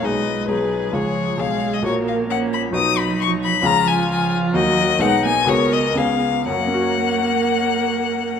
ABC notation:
X:1
M:2/4
L:1/16
Q:1/4=132
K:F#
V:1 name="Violin"
d4 B4 | c4 e3 d | c2 e2 f2 b2 | d'2 b2 c'2 b2 |
a2 g2 g2 z2 | d4 f2 g2 | c2 d2 e4 | f8- |
f8 |]
V:2 name="Viola"
B4 G4- | G4 G4 | A4 C4 | D8 |
E8 | F4 D4 | A4 G2 z2 | A8- |
A8 |]
V:3 name="Grand piano"
[B,,,G,DG]4 [B,,,G,DG]4 | [C,,G,EG]4 [B,,,G,Gc]4 | [A,,,A,Fc]8 | [B,,,DFB]8 |
[C,,CEG]8 | [D,,A,DF]4 [B,,,B,DG]4 | [C,,B,FG]4 [C,,B,CG]4 | [F,,F,A,CFc]8- |
[F,,F,A,CFc]8 |]
V:4 name="Cello" clef=bass
G,4 F,4 | E,4 G,4 | A,4 A,4 | F,8 |
E,4 E,4 | F,4 G,2 A,2 | B,4 B,2 z2 | A,8- |
A,8 |]